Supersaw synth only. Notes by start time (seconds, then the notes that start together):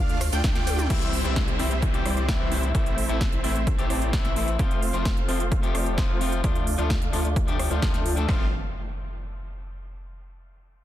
Already playing: A3 D4 F4 D5 F5
0.33 A3 D4 F4 D5 G5
0.44 A3 D4
0.90 G3 C4 E4 C5 E5
1.25 G3 C4 E4 C5 E5
1.59 G3 C4 E4 C5 E5
2.05 G3 C4 E4 C5 D5
2.40 G3 C4 E4 C5 E5
2.75 A3 C4 E4 C5 E5
3.09 A3 C4 E4 C5 E5
3.44 A3 C4 E4 C5 E5
3.90 A3 C4 E4 C5 D5
4.25 A3 C4 E4 C5 E5
4.59 A3 C4 F4 C5 F5
4.94 A3 C4 F4 C5 F5
5.29 A3 C4 F4 C5 F5
5.75 A3 C4 F4 C5 D5
6.09 A3 C4 F4 C5 F5
6.44 A3 D4 F4 D5 F5
6.79 A3 D4 F4 D5 F5
7.13 A3 D4 F4 D5 F5
7.71 A3 D4 F4 D5 G5
7.82 D4 F4 D5
8.29 A3 C4 F4 C5 F5